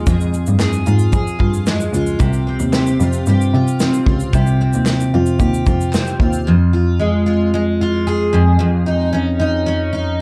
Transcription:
Already playing: G#3 F4
0.07 F2 G#4, kick, shaker
0.21 shaker
0.34 shaker
0.47 G2, shaker
0.59 G#4, snare, clap, shaker
0.73 shaker
0.86 G#2 F4, shaker
0.99 shaker
1.12 F2 G#4, kick, shaker
1.27 shaker
1.39 G2 F4, kick
1.54 shaker
1.67 G#3, snare, clap, shaker
1.80 shaker
1.93 C#2 F4, shaker
2.07 shaker
2.19 C2 C3 G4, kick, shaker
2.33 shaker
2.47 C4
2.60 D#2, shaker
2.73 G4, snare, clap, shaker
2.87 shaker
3.00 F2 F4, shaker
3.13 shaker
3.26 G2 G4, shaker
3.42 shaker
3.54 C3 F4
3.68 shaker
3.80 C4, snare, clap, shaker
3.94 shaker
4.06 C#2 F4, kick
4.20 shaker
4.33 C2 C3 G4, kick, shaker
4.47 shaker
4.61 C4
4.73 D#2, shaker
4.86 G4, snare, clap, shaker
5.00 shaker
5.14 F2 F4
5.26 shaker
5.39 D#2 G4, kick, shaker
5.54 shaker
5.66 F2 F4, kick, shaker
5.81 shaker
5.93 C4, snare, clap, shaker
6.07 shaker
6.20 D#2 F4, kick
6.33 shaker
6.47 F2
6.73 F4
6.99 G#3
7.26 F4
7.54 G#3
7.81 F4
8.07 G#4
8.33 F2
8.59 F2
8.86 D#4
9.13 C#4
9.40 D#4
9.66 C#4
9.93 D#4

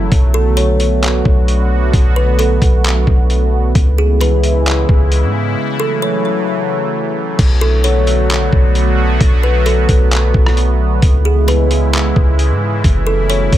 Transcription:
Already playing: F#3 A3
0.12 B1 D3 B3 F#4, kick, closed hi-hat
0.34 A4
0.57 C#5, closed hi-hat
0.80 closed hi-hat
1.03 clap, closed hi-hat
1.25 B1, kick
1.48 closed hi-hat
1.93 B1, kick, closed hi-hat
2.16 B4
2.39 A4, closed hi-hat
2.62 B1, kick, closed hi-hat
2.84 clap, closed hi-hat
3.07 B1, kick
3.30 closed hi-hat
3.75 C#2 C#3 E3 G#3 E4, kick, closed hi-hat
3.98 G#4
4.21 B4, closed hi-hat
4.44 closed hi-hat
4.66 clap, closed hi-hat
4.89 C#2, kick
5.12 closed hi-hat
5.23 G#2
5.57 E3 F#3 A3
5.80 A4
6.02 C#5
7.39 B1 D3 F#3 A3 B3 F#4, kick, closed hi-hat, crash
7.61 A4
7.84 C#5, closed hi-hat
8.07 closed hi-hat
8.30 clap, closed hi-hat
8.53 B1, kick
8.75 closed hi-hat
9.21 B1, kick, closed hi-hat
9.43 B4
9.66 A4, closed hi-hat
9.89 B1, kick, closed hi-hat
10.11 clap, closed hi-hat
10.34 B1, kick
10.46 cross-stick
10.57 closed hi-hat
11.02 C#2 C#3 E3 G#3 E4, kick, closed hi-hat
11.25 G#4
11.48 B4, closed hi-hat
11.71 closed hi-hat
11.93 clap, closed hi-hat
12.16 C#2, kick
12.39 closed hi-hat
12.50 G#2
12.84 F#1 C#3 F#3 A3 E4, kick, closed hi-hat
13.07 A4
13.30 C#5, closed hi-hat
13.53 F#1, kick, closed hi-hat

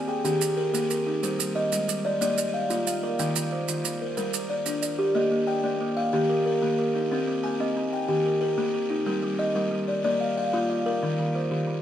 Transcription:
Already playing: C4 D5
0.08 G#4 G5
0.25 D#3 C4 G4, maracas
0.41 G4, maracas
0.57 A#4
0.74 D#3 A#3, maracas
0.90 A#4, maracas
1.07 D#4
1.23 G3 C5, maracas
1.39 G3, maracas
1.55 D#5
1.72 G3 G#3, maracas
1.88 G3, maracas
2.05 D5 D#5
2.21 G3 A#3 D5, maracas
2.38 D5, maracas
2.54 F5
2.70 A#3 F4, maracas
2.87 F5, maracas
3.03 A#4
3.19 D#3 G5, maracas
3.36 D#3, maracas
3.52 C5
3.68 D#3 F4, maracas
3.84 D#3, maracas
4.01 A#4 C5
4.17 D#3 G3 A#4, maracas
4.34 A#4, maracas
4.50 D5
4.66 G3 D4, maracas
4.82 D5, maracas
4.99 G4
5.15 A#3 D#5
5.31 A#3
5.47 G5
5.64 A#3 D5
5.81 A#3
5.97 F5
6.13 D#3 A#3 G4
6.29 A#4
6.46 A#4
6.62 D#3 A#3
6.79 A#4
6.95 D#4
7.11 C4 A#4
7.27 C4
7.44 G#5
7.60 C4 D#5
7.77 C4
7.93 G5
8.08 D#3 C4 G4
8.26 A#4
8.41 A#4
8.58 D#3 A#3
8.74 A#4
8.90 D#4
9.06 G3 A#4
9.23 G3
9.39 D#5
9.55 G3 A#4
9.71 G3
9.88 D5
10.04 G3 A#3 D5
10.21 F5
10.38 F5
10.53 A#3 F4
10.70 F5
10.86 A#4
11.03 D#3
11.19 D#3
11.35 C5
11.51 D#3 G4
11.67 D#3

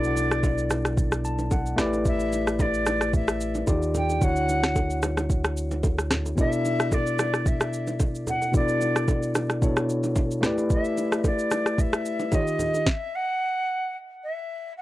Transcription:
Already playing: B1 B2 B3 D4 E4 A4 D5
0.04 shaker
0.17 low bongo, shaker
0.31 cross-stick, shaker
0.43 kick, high bongo, shaker
0.58 shaker
0.70 cross-stick, low bongo, shaker
0.85 cross-stick, shaker
0.97 kick, low conga, shaker
1.12 cross-stick, shaker
1.25 A5, shaker
1.39 low bongo, shaker
1.51 F#5, kick, high bongo, shaker
1.66 shaker
1.76 A1 A3 E4 G4 B4 D5, cross-stick, snare, high bongo, low conga, shaker
1.81 D5
1.93 high bongo, shaker
2.05 E5, kick, low conga, shaker
2.20 shaker
2.33 low bongo, shaker
2.47 cross-stick, shaker
2.59 D5, kick, high bongo, shaker
2.74 shaker
2.86 cross-stick, low bongo, shaker
3.01 cross-stick, shaker
3.13 E5, kick, low conga, shaker
3.28 cross-stick, shaker
3.41 shaker
3.55 low bongo, shaker
3.67 D#2 D#3 D#4 F4 G4 D5, kick, high bongo, shaker
3.82 shaker
3.95 G5, high bongo, low conga, shaker
4.09 high bongo, shaker
4.19 D2 D3 D4 E4 F#4 F#5, kick, low conga, shaker
4.24 C#5
4.36 shaker
4.49 low bongo, shaker
4.64 cross-stick, snare, shaker
4.76 kick, high bongo, shaker
4.90 shaker
5.02 cross-stick, low bongo, shaker
5.17 cross-stick, low bongo, shaker
5.30 kick, low conga, shaker
5.44 cross-stick, shaker
5.57 shaker
5.71 low bongo, shaker
5.83 kick, high bongo, shaker
5.99 cross-stick, shaker
6.11 cross-stick, snare, high bongo, low conga, shaker
6.26 high bongo, shaker
6.36 B2 B3 D4 E4 E5, kick, low conga, shaker
6.40 A4 D5
6.52 shaker
6.65 low bongo, shaker
6.80 cross-stick, shaker
6.92 D5, kick, high bongo, shaker
7.07 shaker
7.19 cross-stick, low bongo, shaker
7.34 cross-stick, shaker
7.46 E5, kick, low conga, shaker
7.61 cross-stick, shaker
7.73 shaker
7.87 low bongo, shaker
8.00 kick, high bongo, shaker
8.15 shaker
8.27 F#5, high bongo, low conga, shaker
8.42 high bongo, shaker
8.52 B2 B3 D4 E4 D5, kick, low conga, shaker
8.56 A4 D5
8.68 shaker
8.81 low bongo, shaker
8.96 cross-stick, shaker
9.08 kick, high bongo, shaker
9.23 shaker
9.35 cross-stick, low bongo, shaker
9.50 cross-stick, shaker
9.61 B2 B3 D4 E4 A4 C#5, kick, low conga, shaker
9.77 cross-stick, shaker
9.89 shaker
10.03 low bongo, shaker
10.16 kick, high bongo, shaker
10.31 shaker
10.41 A3 E4 G4 B4, cross-stick, snare, high bongo, low conga, shaker
10.46 D5
10.58 high bongo, shaker
10.70 E5, kick, low conga, shaker
10.85 shaker
10.97 low bongo, shaker
11.12 cross-stick, shaker
11.24 D5, kick, high bongo, shaker
11.39 shaker
11.51 cross-stick, low bongo, shaker
11.66 cross-stick, shaker
11.78 E5, kick, low conga, shaker
11.93 cross-stick, shaker
12.06 shaker
12.20 low bongo, shaker
12.31 D#3 D#4 F4 G4 C#5 D#5, kick, high bongo, shaker
12.40 D#5
12.47 shaker
12.59 high bongo, low conga, shaker
12.74 high bongo, shaker
12.86 E5, kick, snare
13.15 F#5
14.23 E5
14.77 F#5

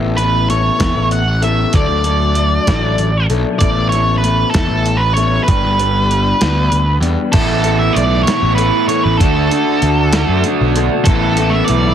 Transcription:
Already playing: A1 A3 B3 E4 A4
0.17 A3 B3 E4 A4 B4, closed hi-hat
0.48 A3 B3 E4 A4 C#5, closed hi-hat
0.78 E2 A3 B3 E4 A4, kick, snare, closed hi-hat
0.96 A1
1.11 F#5, closed hi-hat
1.41 A3 B3 E4 A4 E5, closed hi-hat
1.73 D2 F#3 A3 D4 A4 D5, kick, closed hi-hat
1.89 D2
2.04 F#3 A3 D4 A4, closed hi-hat
2.35 F#3 A3 D4 A4, closed hi-hat
2.67 A1 F#3 A3 D4 A4, kick, snare, closed hi-hat
2.98 A1, closed hi-hat
3.29 B1 F#3 A3 D4 A4, closed hi-hat
3.59 A1 A3 B3 E4 A4 D5, kick, closed hi-hat
3.89 C#5, closed hi-hat
3.93 A3 B3 E4 A4
4.18 B4
4.24 A3 B3 E4 A4, closed hi-hat
4.50 A4
4.54 E2 A3 B3 E4, kick, snare, closed hi-hat
4.69 A1
4.86 closed hi-hat
4.97 B4
5.13 B3 E4 A4 C#5, closed hi-hat
5.17 A3
5.44 B4
5.48 G1 G3 B3 D4 G4, kick, closed hi-hat
5.64 G1
5.78 G3 B3 D4 G4, closed hi-hat
6.10 G3 B3 D4 G4, closed hi-hat
6.40 D2 G3 B3 D4 G4, snare, closed hi-hat
6.72 D2, closed hi-hat
7.01 E2 G3 B3 D4 G4, closed hi-hat
7.32 A1 A2 E3 A3 B3 E4 A4, kick, closed hi-hat, crash
7.63 A3 B3 E4 A4, closed hi-hat
7.79 E5
7.93 B1 A3 B3 E4 A4 D5, closed hi-hat
8.23 A3 B3 E4 A4 C#5
8.27 A2 E3, snare, closed hi-hat
8.42 A1
8.55 A3 B3 E4 A4 B4, closed hi-hat
8.88 A3 B3 E4 A4 C#5, closed hi-hat
9.03 A1 B4
9.17 D2 D3 A3 D4 F#4 A4, kick, closed hi-hat
9.22 A4
9.50 A3 D4 F#4 A4, closed hi-hat
9.81 D2 A3 D4 F#4 A4, closed hi-hat
10.12 D3 A3 D4 F#4 A4, snare, closed hi-hat
10.28 F#2
10.44 A3 D4 F#4 A4, closed hi-hat
10.61 B1
10.75 A3 D4 F#4 A4, closed hi-hat
11.05 A1 A2 E3 A3 B3 E4 A4 B4 E5 B5, kick, closed hi-hat
11.37 A3 B3 E4 A4, closed hi-hat
11.50 E5
11.65 A3 D5, closed hi-hat
11.69 B1 B3 E4 A4

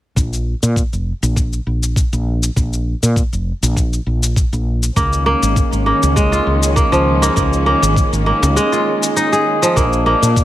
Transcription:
0.16 A#1, kick, cabasa
0.33 cabasa
0.63 A#2, cabasa
0.76 kick, cabasa
0.93 F1, cabasa
1.23 A#1, cabasa
1.36 kick, cabasa
1.53 cabasa
1.67 A#1
1.83 cabasa
1.96 kick, cabasa
2.13 A#1, cabasa
2.43 cabasa
2.56 A#1, kick, cabasa
2.73 cabasa
3.03 A#2, cabasa
3.16 kick, cabasa
3.33 F1, cabasa
3.63 A#1, cabasa
3.76 kick, cabasa
3.93 cabasa
4.06 A#1
4.23 cabasa
4.36 kick, cabasa
4.53 A#1, cabasa
4.83 cabasa
4.96 C#2 D#3 G#3 A#3 C#4, kick, cabasa
5.13 cabasa
5.26 A#3
5.43 G#1, cabasa
5.56 kick, cabasa
5.73 G#1, cabasa
5.86 A#3
6.03 C#2, cabasa
6.16 G#3, kick, cabasa
6.32 F4, cabasa
6.47 C#2
6.63 cabasa
6.76 A#3, kick, cabasa
6.92 C#2 F3, cabasa
7.22 A#3, cabasa
7.36 C#2 A#3, kick, cabasa
7.53 cabasa
7.66 A#3
7.82 G#1, cabasa
7.96 kick, cabasa
8.13 G#1, cabasa
8.26 A#3
8.43 C#2, cabasa
8.56 G#3, cabasa
8.72 F4, cabasa
9.03 cabasa
9.16 D#4, cabasa
9.32 G#4, cabasa
9.62 F3, cabasa
9.76 A#1 F3 A#3 D4, kick, cabasa
9.93 cabasa
10.06 A#3
10.22 A#2, cabasa
10.37 kick, cabasa

